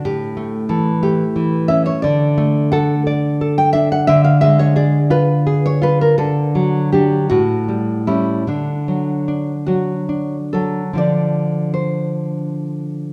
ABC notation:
X:1
M:6/8
L:1/16
Q:3/8=56
K:D
V:1 name="Nylon-string guitar"
G4 A2 G4 e c | d4 f4- f g e f | e =f e c d2 B3 c B _B | A4 G2 F4 E2 |
D6 F4 A2 | [K:Dm] d4 c8 |]
V:2 name="Nylon-string guitar" clef=bass
A,,2 A,2 E,2 A,2 E,2 C2 | D,2 A,2 A2 d2 A2 D2 | D,2 _A,2 _A2 =F2 A2 F2 | D,2 F,2 [F,D]2 A,,2 G,2 [G,C]2 |
D,2 F,2 D2 F,2 D2 F,2 | [K:Dm] [D,F,D]12 |]